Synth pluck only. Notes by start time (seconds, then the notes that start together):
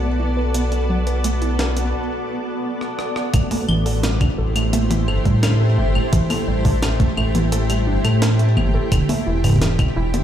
0.02 A3
0.20 E4
0.37 B4
0.54 B3
0.72 B3
0.89 F#3
1.07 B4
1.24 A3
1.42 E4
1.59 B4
1.77 B3
3.34 A3
3.51 A3
3.68 E3
3.86 A4
4.03 G3
4.21 D4
4.38 A4
4.56 A3
4.73 A3
4.91 E3
5.08 A4
5.25 G3
5.43 D4
5.60 A4
5.78 A3
5.95 A3
6.13 E3
6.30 A4
6.48 G3
6.65 D4
6.82 A4
7.00 A3
7.17 A3
7.35 E3
7.52 A4
7.70 G3
7.87 D4
8.04 A4
8.22 A3
8.39 A3
8.57 E3
8.74 A4
8.92 D3
9.09 A3
9.27 E4
9.44 E3
9.61 E3
9.79 B2
9.96 E4
10.14 D3